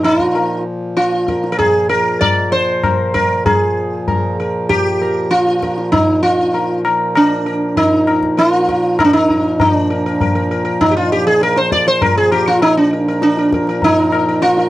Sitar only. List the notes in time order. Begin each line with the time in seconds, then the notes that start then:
0.04 D#4
0.22 F4
0.35 A#4
0.97 F4
1.28 A#4
1.52 A#4
1.59 G#4
1.89 A#4
2.21 D5
2.52 C5
2.84 A#4
3.14 A#4
3.46 G#4
4.08 A#4
4.40 A#4
4.69 G4
5.02 A#4
5.31 F4
5.63 A#4
5.92 D#4
6.23 F4
6.54 A#4
6.86 A#4
7.16 D4 A#4
7.46 A#4
7.77 D#4 A#4
8.07 A#4
8.37 F4 A#4
8.68 A#4
8.99 D#4 A#4
9.05 D4
9.13 D#4
9.30 A#4
9.61 D4
9.90 A#4
10.06 A#4
10.21 A#4
10.35 A#4
10.51 A#4
10.65 A#4
10.81 D#4
10.91 G4
10.97 F4
11.12 G4
11.27 G#4
11.43 A#4
11.57 C5
11.72 D5
11.88 C5
12.02 A#4
12.17 G#4
12.32 G4
12.48 F4
12.62 D#4
12.77 D4
12.93 A#4
13.08 A#4
13.23 D4
13.39 A#4
13.54 A#4
13.69 A#4
13.84 D#4
14.00 A#4
14.14 A#4
14.28 A#4
14.42 F4
14.59 A#4